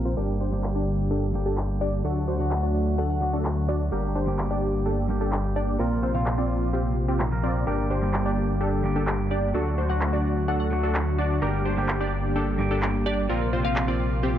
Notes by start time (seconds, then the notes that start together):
Already playing: A#1 A#2 C3 F3 A#3 C4 F4 A#4
0.05 C4 F4 C5
0.16 G1 G2 D3 G3 A#3 D4 G4 A#4
0.40 D4 G4 C5
0.51 G2 G3 A#3 D4 G4
0.64 clap
0.75 D4 G4 D5
1.11 D4 G4 A4
1.33 G2 G3 A#3 D4 G4
1.46 D4 G4 A4
1.57 clap
1.81 D4 G4 D5
2.04 D2 F#3 A3 D4 F#4 A4
2.28 D4 F#4 C5
2.38 F#3 A3 D4 F#4 F#5
2.51 clap
2.63 D4 F#4 D5
2.98 D4 F#4 A4 F#5
3.10 F#5
3.20 F#3 A3 D4 F#4
3.33 D4 F#4 A4
3.45 clap
3.69 D4 F#4 D5
3.91 G1 G2 G3 A#3 D4 G4 A#4
4.15 D4 G4 C5
4.26 G2 G3 A#3 D4 G4
4.39 clap
4.50 D4 G4 D5
4.86 D4 G4 A4
5.08 G2 G3 A#3 D4 G4
5.21 D4 G4 A4
5.32 clap
5.56 D4 G4 D5
5.79 A#1 A#2 C3 F3 A#3 C4 F4 A#4
6.03 C4 F4 C5
6.13 A#2 F3 A#3 C4 F4 F5
6.26 clap
6.38 C4 F4 D5
6.73 C4 F4 G4
7.08 C4 F4 G4
7.19 A#2 F3 A#3 C4 D#4, clap
7.31 A#2 F3 A#3 C4 A#4
7.43 C4 F4 D5
7.66 G1 G2 D3 G3 A#3 D4 G4 A#4
7.90 D4 G4 C5
8.01 G2 G3 A#3 D4 G4
8.14 clap
8.25 D4 G4 D5
8.61 D4 G4 A4
8.83 G2 G3 A#3 D4 G4
8.96 D4 G4 A4
9.07 clap
9.31 D4 G4 D5
9.54 D2 D3 F#3 A3 D4 F#4 A4
9.78 D4 F#4 C5
9.88 F#3 A3 D4 F#4 F#5
10.01 clap
10.13 D4 F#4 D5
10.48 D4 F#4 A4 F#5
10.60 F#5
10.70 F#3 A3 D4 F#4
10.83 D4 F#4 A4
10.95 clap
11.18 D4 F#4 D5
11.41 G1 G2 G3 A#3 D4 G4 A#4
11.65 D4 G4 C5
11.76 G2 G3 A#3 D4 G4
11.89 clap
12.01 D4 G4 D5
12.36 D4 G4 A4
12.58 G2 G3 A#3 D4 G4
12.71 D4 G4 A4
12.82 clap
13.06 D4 G4 D5
13.29 A#1 A#2 C3 F3 A#3 C4 F4 A#4
13.53 C4 F4 C5
13.63 A#2 F3 A#3 C4 F4 F5
13.76 clap
13.88 C4 F4 D5
14.23 C4 F4 G4